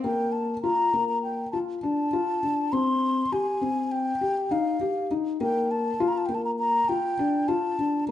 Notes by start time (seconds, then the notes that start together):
0.03 A#3 G5
0.32 A5
0.62 F4 A#5
0.94 A#3
1.09 A#5
1.23 G5
1.52 F4 A5
1.82 D4 A5
2.13 F4
2.43 D4
2.72 C4 C6
3.32 G4 G#5
3.61 C4
3.92 G5
4.21 G4
4.51 D#4 F5
4.81 G4
5.11 D#4
5.41 A#3 G5
5.71 A5
6.00 F4
6.08 A#5
6.17 A5
6.26 A#3 G5
6.35 A5
6.45 A#5
6.59 A#5
6.89 F4 G5
7.19 D4
7.48 F4 A5
7.79 D4